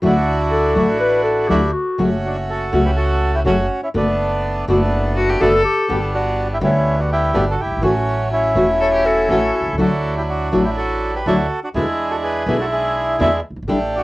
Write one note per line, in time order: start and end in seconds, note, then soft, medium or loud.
0.02 0.73 D2 medium
0.02 0.12 D3 medium
0.02 0.12 F#3 medium
0.02 0.12 A3 medium
0.02 0.74 D4 medium
0.02 0.12 E4 medium
0.02 0.74 E4 medium
0.02 0.12 F#4 medium
0.02 0.74 F#4 medium
0.08 1.48 D4 medium
0.08 1.49 F#4 medium
0.50 0.97 A4 medium
0.75 1.47 A1 medium
0.75 0.85 D3 medium
0.75 0.85 F#3 medium
0.75 0.85 A3 medium
0.75 1.47 D4 medium
0.75 0.85 E4 medium
0.75 1.47 E4 medium
0.75 0.85 F#4 medium
0.75 1.47 F#4 medium
1.00 1.22 B4 medium
1.23 1.50 A4 medium
1.48 1.71 D2 medium
1.48 1.58 D3 medium
1.48 1.59 F#3 medium
1.48 1.59 A3 medium
1.48 1.71 D4 medium
1.48 1.71 E4 medium
1.48 1.59 E4 medium
1.48 1.71 F#4 medium
1.48 1.59 F#4 medium
1.48 1.74 G4 medium
1.73 2.11 F#4 medium
1.98 2.69 F#1 medium
1.98 2.08 C#3 medium
1.98 2.08 F#3 medium
1.98 2.70 A3 medium
1.98 2.09 A3 medium
1.98 2.09 C#4 medium
1.98 2.70 C#4 medium
1.98 2.70 F#4 medium
1.98 2.09 F#4 medium
2.26 2.37 D4 medium
2.26 2.36 F#4 medium
2.50 2.84 F#4 medium
2.50 2.84 A4 medium
2.72 3.43 C#2 medium
2.72 2.82 C#3 medium
2.72 2.82 F#3 medium
2.72 3.43 A3 medium
2.72 2.82 A3 medium
2.72 3.43 C#4 medium
2.72 2.83 C#4 medium
2.72 3.43 F#4 medium
2.72 2.83 F#4 medium
2.86 2.92 G4 medium
2.86 2.91 B4 medium
2.97 3.32 F#4 medium
2.97 3.35 A4 medium
3.35 3.40 E4 medium
3.35 3.40 G4 medium
3.44 3.67 F#1 medium
3.44 3.55 C#3 medium
3.44 3.55 F#3 medium
3.44 3.67 A3 medium
3.44 3.56 A3 medium
3.44 3.55 C#4 medium
3.44 3.67 C#4 medium
3.44 3.81 C#4 medium
3.44 3.56 F#4 medium
3.44 3.67 F#4 medium
3.44 3.81 F#4 medium
3.83 3.88 C#4 medium
3.83 3.89 E4 medium
3.94 4.65 F#1 medium
3.94 4.04 B2 medium
3.94 4.04 D3 medium
3.94 4.05 A3 medium
3.94 4.65 A3 medium
3.94 4.04 B3 medium
3.94 4.65 B3 medium
3.94 4.65 D4 medium
3.94 4.04 F#4 medium
4.68 5.37 F#1 medium
4.68 4.77 B2 medium
4.68 4.77 D3 medium
4.68 4.78 A3 medium
4.68 5.38 A3 medium
4.68 4.78 B3 medium
4.68 5.38 B3 medium
4.68 5.62 B3 medium
4.68 5.38 D4 medium
4.68 4.78 F#4 medium
4.72 5.63 D4 medium
5.16 5.42 F#4 medium
5.16 5.31 F#4 medium
5.29 5.42 G4 medium
5.40 5.61 F#1 medium
5.40 5.50 B2 medium
5.40 5.50 D3 medium
5.40 5.50 A3 medium
5.40 5.61 A3 medium
5.40 5.50 B3 medium
5.40 5.62 B3 medium
5.40 5.62 D4 medium
5.40 5.50 F#4 medium
5.40 5.64 A4 medium
5.40 6.01 A4 medium
5.64 5.98 G4 medium
5.88 6.58 G1 medium
5.88 5.98 B2 medium
5.88 5.98 D3 medium
5.88 6.58 G3 medium
5.88 5.98 G3 medium
5.88 5.98 B3 medium
5.88 6.58 B3 medium
5.88 6.58 D4 medium
5.88 5.99 G4 medium
6.14 6.48 D4 medium
6.14 6.48 F#4 medium
6.54 6.58 E4 medium
6.54 6.58 G4 medium
6.60 7.31 D2 medium
6.60 6.70 B2 medium
6.60 6.71 D3 medium
6.60 7.31 D3 medium
6.60 6.70 G3 medium
6.60 7.31 G3 medium
6.60 6.71 B3 medium
6.60 7.31 B3 medium
6.60 6.97 C#4 medium
6.60 7.00 E4 medium
6.60 6.71 G4 medium
7.00 7.10 D4 medium
7.00 7.10 F#4 medium
7.12 7.45 E4 medium
7.12 7.45 G4 medium
7.34 7.55 G1 medium
7.34 7.43 B2 medium
7.34 7.43 D3 medium
7.34 7.55 G3 medium
7.34 7.43 G3 medium
7.34 7.55 B3 medium
7.34 7.43 B3 medium
7.34 7.55 D4 medium
7.34 7.44 G4 medium
7.50 7.61 F#4 medium
7.50 7.61 A4 medium
7.60 7.83 E4 medium
7.60 7.82 G4 medium
7.65 7.71 F#1 soft
7.71 7.76 G1 medium
7.77 7.82 G#1 medium
7.81 8.52 A1 medium
7.81 7.91 E3 medium
7.81 8.52 F#3 medium
7.81 7.92 A3 medium
7.81 8.52 A3 medium
7.81 7.92 C#4 medium
7.81 8.53 C#4 medium
7.81 8.29 C#4 medium
7.81 8.28 F#4 medium
7.81 7.92 F#4 medium
8.33 9.76 C#4 medium
8.33 9.76 E4 medium
8.55 9.26 E1 medium
8.55 8.64 E3 medium
8.55 9.26 F#3 medium
8.55 8.65 A3 medium
8.55 9.26 A3 medium
8.55 9.26 C#4 medium
8.55 8.65 C#4 medium
8.55 8.65 F#4 medium
8.80 8.92 A4 medium
8.80 9.07 C#5 medium
8.93 9.08 G4 medium
9.06 9.31 F#4 medium
9.06 9.31 A4 medium
9.29 9.50 A1 medium
9.29 9.39 E3 medium
9.29 9.50 F#3 medium
9.29 9.39 A3 medium
9.29 9.51 A3 medium
9.29 9.51 C#4 medium
9.29 9.39 C#4 medium
9.29 9.66 F#4 medium
9.29 9.40 F#4 medium
9.29 9.67 A4 medium
9.61 9.66 B1 soft
9.66 9.72 C2 medium
9.73 9.79 C#2 medium
9.77 10.49 D2 medium
9.77 9.87 D3 medium
9.77 9.87 F#3 medium
9.77 10.49 F#3 medium
9.77 9.88 A3 medium
9.77 10.49 D4 medium
9.77 9.88 E4 medium
9.77 10.49 E4 medium
9.77 9.88 F#4 medium
9.77 10.14 A4 medium
9.82 10.15 F#4 medium
10.17 10.23 E4 medium
10.17 10.22 G4 medium
10.29 10.63 D4 medium
10.29 10.63 F#4 medium
10.52 11.22 A1 medium
10.52 10.61 D3 medium
10.52 11.22 F#3 medium
10.52 10.62 F#3 medium
10.52 10.62 A3 medium
10.52 11.22 D4 medium
10.52 11.22 E4 medium
10.52 10.62 E4 medium
10.52 10.62 F#4 medium
10.64 10.70 E4 medium
10.64 10.70 G4 medium
10.77 11.11 F#4 medium
10.77 11.15 A4 medium
11.16 11.26 G4 medium
11.16 11.27 B4 medium
11.26 11.46 D2 medium
11.26 11.35 D3 medium
11.26 11.47 F#3 medium
11.26 11.36 F#3 medium
11.26 11.35 A3 medium
11.26 11.47 D4 medium
11.26 11.47 E4 medium
11.26 11.36 E4 medium
11.26 11.60 F#4 medium
11.26 11.36 F#4 medium
11.26 11.60 A4 medium
11.64 11.69 D4 medium
11.64 11.69 F#4 medium
11.74 12.43 E2 medium
11.74 11.84 B2 medium
11.74 11.85 D3 medium
11.74 12.43 G#3 medium
11.74 11.85 G#3 medium
11.74 11.85 B3 medium
11.74 12.43 D4 medium
11.74 12.43 E4 medium
11.74 12.08 E4 medium
11.74 11.85 E4 medium
11.74 12.12 G#4 medium
12.11 12.16 F#4 medium
12.11 12.16 A4 medium
12.23 12.57 G#4 medium
12.23 12.57 B4 medium
12.46 13.16 B1 medium
12.46 12.56 B2 medium
12.46 12.56 D3 medium
12.46 13.16 G#3 medium
12.46 12.57 G#3 medium
12.46 12.56 B3 medium
12.46 13.16 D4 medium
12.46 13.17 E4 medium
12.46 12.57 E4 medium
12.61 12.66 F#4 medium
12.61 12.66 A4 medium
12.72 13.41 E4 medium
12.72 13.41 G#4 medium
13.19 13.40 E2 medium
13.19 13.28 B2 medium
13.19 13.28 D3 medium
13.19 13.40 G#3 medium
13.19 13.29 G#3 medium
13.19 13.29 B3 medium
13.19 13.40 D4 medium
13.19 13.40 E4 medium
13.19 13.30 E4 medium
13.50 13.56 F#1 soft
13.56 13.62 G1 medium
13.63 13.68 G#1 medium
13.68 14.03 A1 medium
13.68 13.77 D3 medium
13.68 13.77 G3 medium
13.68 14.03 A3 medium
13.68 14.03 D4 medium
13.68 13.77 D4 medium
13.68 13.78 E4 medium
13.68 14.03 G4 medium
13.95 14.03 D4 medium
13.95 14.03 F#4 medium